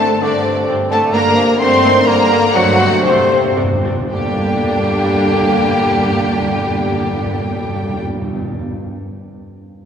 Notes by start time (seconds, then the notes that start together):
Already playing: G2 D3 A3 C4 D4 A4 A5
0.00 C4 D4
0.21 G2 D3 A3 C4 D4 D5
0.44 C3 C4 D4
0.67 G2 C3 C4 D4
0.90 D3 A3 C4 D4 A4 A5
1.13 G2 D3 A#3 D4 A#4 A#5
1.36 C3 A#3 D4
1.58 G2 D3 A3 A#3 C4 D4 C5 C6
1.83 D#3 A#3 D4
2.06 G2 D3 G3 A#3 D4 A#4 A#5
2.30 A#3 D4
2.53 G2 D3 F#3 A3 C4 D4 F#4 F#5
2.65 G2
2.79 G2 C3 C4 D4
2.90 G2
2.99 G2
3.04 G2 C3 A3 C4 D4 C5
3.16 G2
3.25 G2
3.30 A#3 C4 D4
3.34 G2
3.44 G2
3.52 G2 C4 D4
3.57 G2 C3 C4
3.62 G2
3.71 G2
3.81 G2 C4 D4
3.91 G2
4.00 G2
4.11 G2 D3 G3 A#3 D4 G4 G5
4.19 G2
4.25 G2
4.31 G2
4.38 G2
4.44 G2
4.50 G2
4.57 G2
4.64 G2
4.70 G2
4.76 G2
4.82 G2
4.89 G2
4.95 G2
5.02 G2
5.08 G2
5.14 G2
5.21 G2
5.28 G2
5.34 G2
5.40 G2
5.46 G2
5.53 G2
5.59 G2
5.65 G2
5.72 G2
5.78 G2
5.84 G2
5.91 G2
5.96 G2
6.03 G2
6.10 G2
6.16 G2
6.22 G2
6.29 G2
6.35 G2
6.42 G2
6.48 G2
6.55 G2
6.61 G2
6.68 G2
6.74 G2
6.81 G2
6.87 G2
6.93 G2
7.00 G2
7.06 G2
7.12 G2
7.18 G2
7.24 G2
7.31 G2
7.37 G2
7.44 G2
7.50 G2
7.56 G2
7.63 G2
7.69 G2
7.76 G2
7.82 G2
7.89 G2
7.95 G2
8.02 G2
8.08 G2
8.15 G2
8.21 G2
8.28 G2
8.34 G2
8.40 G2
8.46 G2
8.53 G2
8.59 G2